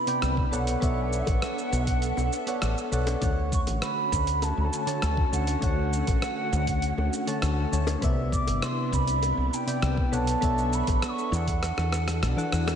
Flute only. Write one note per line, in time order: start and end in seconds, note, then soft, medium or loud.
0.00 0.56 B5 loud
0.54 0.83 F#5 medium
0.84 1.02 F#5 loud
1.01 1.19 F#5 loud
1.01 1.06 G#5 loud
1.18 1.23 E5 loud
1.18 2.89 F#5 loud
3.54 3.60 C#6 loud
3.83 4.45 B5 loud
4.43 4.61 A5 loud
4.60 4.65 B5 loud
4.64 4.78 A5 loud
4.77 4.82 G#5 loud
4.81 5.33 A5 loud
5.33 5.61 F#5 medium
5.64 7.69 F#5 loud
8.33 8.65 D6 loud
8.63 8.93 C6 loud
8.93 9.56 B5 loud
9.54 10.13 G5 loud
10.14 10.76 A5 loud
10.74 11.03 B5 loud
11.04 11.10 E6 medium
11.09 11.36 C#6 loud
11.34 12.53 F#5 medium